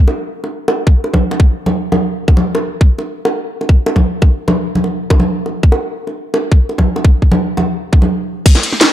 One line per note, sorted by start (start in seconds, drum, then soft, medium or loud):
0.08 high bongo medium
0.44 high bongo soft
0.68 high bongo medium
0.87 kick loud
1.04 high bongo medium
1.14 kick medium
1.14 high conga medium
1.31 high bongo medium
1.40 kick loud
1.66 high bongo medium
1.66 high conga medium
1.92 high bongo medium
1.92 high conga medium
2.28 kick loud
2.28 high bongo medium
2.37 high conga medium
2.55 high bongo medium
2.81 kick loud
2.98 high bongo soft
3.25 high bongo medium
3.61 high bongo soft
3.69 kick loud
3.86 high bongo medium
3.96 kick medium
3.96 high conga medium
4.22 kick loud
4.22 high bongo soft
4.48 high bongo medium
4.48 high conga medium
4.75 high conga medium
4.84 high bongo soft
5.10 kick loud
5.10 high bongo medium
5.20 high conga medium
5.46 high bongo soft
5.63 kick loud
5.72 high bongo medium
6.07 high bongo soft
6.34 high bongo medium
6.52 kick medium
6.69 high bongo soft
6.78 kick medium
6.78 high conga medium
6.96 high bongo medium
7.04 kick loud
7.22 kick medium
7.32 high bongo soft
7.32 high conga medium
7.57 high bongo medium
7.57 high conga medium
7.92 kick medium
7.92 high bongo soft
8.02 high conga medium
8.46 kick loud
8.46 closed hi-hat medium
8.46 crash loud
8.55 snare medium
8.55 snare soft
8.55 closed hi-hat soft
8.63 closed hi-hat medium
8.63 open hi-hat medium
8.73 snare soft
8.80 snare loud
8.80 closed hi-hat medium
8.80 closed hi-hat loud